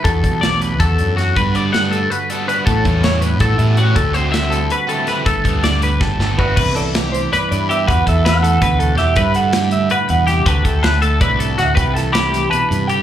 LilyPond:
<<
  \new Staff \with { instrumentName = "Clean electric guitar" } { \time 7/8 \key g \major \tempo 4 = 161 r2. r8 | r2. r8 | r2. r8 | r2. r8 |
r2. b'8~ | b'8 d''4 c''8 d''8 d''8 e''8 | fis''8 e''8 fis''2 e''8~ | e''8 fis''4 e''8 fis''8 fis''8 g''8 |
a''8 g''8 a''4 d''4 fis''32 e''32 fis''16 | g''8 a''8 b''4 a''4 g''8 | }
  \new Staff \with { instrumentName = "Clean electric guitar" } { \time 7/8 \key g \major a'4 d''8 b'8 a'4 fis'8 | b'8 d''8 fis''8 a'8 b'8 a'8 b'8 | a'4 cis''8 b'8 a'4 fis'8 | a'8 c''8 e''8 a'8 b'8 a'8 b'8 |
a'4 d''8 b'8 a'4 fis'8 | b'8 a'8 g'4 b'4 g'8 | b'8 a'8 b'8 a'8 b'8 a'8 g'8 | b'8 a'8 g'4 b'4 g'8 |
b'8 a'8 b'8 a'8 b'8 a'8 fis'8 | b'8 a'8 g'4 b'4 g'8 | }
  \new Staff \with { instrumentName = "Clean electric guitar" } { \time 7/8 \key g \major << { <e g d' fis'>4. d'8 fis'8 d'8 fis'8 | <d b d' fis'>8 b4 b16 d'16 fis'8 d'8 fis'8 | <e g b fis'>8 g4 b8 fis'8 b8 g'8 | r8 c'4 e'8 fis'8 e'8 e'8~ |
e'8 b4 d'8 g'8 d'8 e'8 | <e b d' e'>4 b16 d'4~ d'16 e'8 b8 | fis'4 d'4. fis'8 g8 | e'4 d'2~ d'8 |
fis'4 e'16 fis'4~ fis'16 e'16 fis'16 c'8 | e'4 d'2~ d'8 | } \\ { e,4 e2~ e8 | g,4 d2~ d8 | a,4 e2~ e8 | d4 g2~ g8 |
g,4 d2~ d8 | c8 e4 e8 g,4. | e,8 e4 e8 b,4. | g,8 d4 d8 a,8 b,8 c8 |
d8 a4 a8 a,4. | c8 e4 e8 b,8 c8 d8 | } >> }
  \new Staff \with { instrumentName = "Overdriven electric guitar" } { \time 7/8 \key g \major r2. r8 | r8 <d g b d'>8 <d g b d'>8 r4 <d g b d'>8 <d g b d'>8 | r8 <e g cis' e'>8 <e g cis' e'>8 r4 <e g cis' e'>8 <e g cis' e'>8 | r8 <d a c' fis'>8 <d a c' fis'>8 r4 <d a c' fis'>8 <d a c' fis'>8 |
r8 <d g b d'>8 <d g b d'>8 r4 <d g b d'>8 <d g b d'>8 | r2. r8 | r2. r8 | r2. r8 |
r2. r8 | r2. r8 | }
  \new Staff \with { instrumentName = "Fingered electric bass" } { \clef bass \time 7/8 \key g \major e,8 b,,4. e,8 fis,4 | g,2 r4. | a,8 e,4. a,8 a,4 | d,2 r4. |
g,,8 d,4. g,,8 g,,4 | c,2 r8 g,4 | e,8 e,4. d,4 e,8 | g,2 r8 e,4 |
d,8 d,4. c,4 d,8 | c,2 r8 g,4 | }
  \new DrumStaff \with { instrumentName = "Drums" } \drummode { \time 7/8 <hh bd>8 <hh bd>8 <hh sn>8 hh8 <hh bd>8 hh8 <hh sn>8 | <hh bd>8 hh8 <hh sn>8 hh8 hh8 hh8 hh8 | <hh bd>8 <hh bd>8 <hh sn>8 hh8 <hh bd>8 hh8 hh8 | <hh bd>8 hh8 <hh sn>8 hh8 hh8 hh8 <hh sn>8 |
<hh bd>8 <hh bd>8 <hh sn>8 hh8 <bd sn>8 sn8 bd8 | <cymc bd>8 hh8 <hh sn>8 hh8 <hh sn>8 hh8 hh8 | <hh bd>8 <hh bd>8 <hh sn>8 hh8 <hh bd>8 hh8 <hh sn>8 | <hh bd>8 hh8 <hh sn>8 hh8 hh8 hh8 <hh sn>8 |
<hh bd>8 <hh bd>8 <hh sn>8 hh8 <hh bd>8 hh8 <hh sn>8 | <hh bd>8 <hh sn>8 <hh sn>8 <hh sn>8 hh8 hh8 hh8 | }
>>